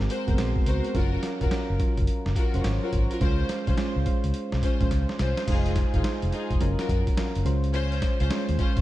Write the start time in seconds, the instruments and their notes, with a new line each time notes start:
Already playing: synth keys G#3 C4 F#4 G#4 A#4
0.09 string section F#4 A#4 C5, closed hi-hat
0.27 fingered electric bass F#1, synth keys G#3 B3 F#4 A#4, kick, closed hi-hat
0.34 synth keys C4
0.38 fingered electric bass A#1, synth keys C6, snare, closed hi-hat
0.56 kick
0.66 fingered electric bass C#2, string section F#4 A#4 C5, closed hi-hat
0.84 closed hi-hat
0.94 fingered electric bass F#1, synth keys F#3 C#4 F4 A#4, string section F4 F#4 A#4, kick, closed hi-hat
1.23 snare, closed hi-hat
1.41 fingered electric bass F1, string section F4 F#4 A#4, kick, closed hi-hat
1.51 synth keys F#3 C#4 F4 A#4, snare, closed hi-hat
1.70 fingered electric bass F#1
1.79 synth keys F#3 C#4 F4 A#4, kick, closed hi-hat
1.97 fingered electric bass F#1, kick, closed hi-hat
2.07 closed hi-hat
2.26 fingered electric bass F#1, snare
2.36 string section F4 F#4 A#4, kick, closed hi-hat
2.54 fingered electric bass F1, synth keys F#3 C#4 F4 C5, closed hi-hat
2.61 fingered electric bass G#1, synth keys C#5, snare, closed hi-hat
2.82 string section F4 F#4 A#4
2.93 fingered electric bass G#1, kick, closed hi-hat
3.10 string section F4 F#4 A#4, closed hi-hat
3.20 fingered electric bass C#2, synth keys G#3 C#4 F4 C5, string section C#4 F4 C5, kick, closed hi-hat
3.49 snare, closed hi-hat
3.67 fingered electric bass C2, string section C#4 F4 C5, kick, closed hi-hat
3.77 synth keys G#3 C#4 F4 C5, snare, closed hi-hat
3.96 fingered electric bass C#2
4.05 synth keys G#3 C#4 F4 C5, kick, closed hi-hat
4.24 fingered electric bass C#2, closed hi-hat
4.34 closed hi-hat
4.52 fingered electric bass C2, snare
4.62 string section C#4 F4 C5, kick, closed hi-hat
4.80 fingered electric bass A#1, synth keys G#3 C#4 F4 C5, kick, closed hi-hat
4.91 fingered electric bass C#2, snare, closed hi-hat
5.09 snare
5.19 fingered electric bass C2, string section C#4 F4 C5, snare, closed hi-hat
5.37 snare, closed hi-hat
5.47 fingered electric bass F1, synth keys G#3 D#4 F4 C5, string section D#4 F4 G#4, kick, closed hi-hat, crash
5.66 closed hi-hat
5.76 kick, snare, closed hi-hat
5.94 fingered electric bass G#1, string section D#4 F4 G#4, kick, closed hi-hat
6.04 synth keys G#3 D#4 F4 C5, snare, closed hi-hat
6.22 fingered electric bass F1, closed hi-hat
6.32 string section D#4 F4 G#4, closed hi-hat
6.50 fingered electric bass F1, kick, closed hi-hat
6.60 fingered electric bass F#1, synth keys F#3 C#4 F4 A#4, closed hi-hat
6.79 string section F4 F#4 A#4, snare, closed hi-hat
6.89 fingered electric bass F#2, kick, closed hi-hat
7.07 kick, closed hi-hat
7.17 synth keys F#3 C#4 F4 A#4, muted fingered electric bass stroke, snare, closed hi-hat
7.35 fingered electric bass F#1, closed hi-hat
7.45 fingered electric bass C#2, synth keys G#3 C#4 F4 C5, closed hi-hat
7.64 closed hi-hat
7.73 string section C#4 F4 C5, closed hi-hat
7.92 closed hi-hat
8.02 kick, snare, closed hi-hat
8.20 fingered electric bass C#2, string section C#4 F4 C5, closed hi-hat
8.30 synth keys G#3 C#4 F4 C5, snare, closed hi-hat
8.49 fingered electric bass D#2, closed hi-hat
8.58 string section C#4 F4 C5, kick, closed hi-hat
8.77 fingered electric bass C#2, kick, closed hi-hat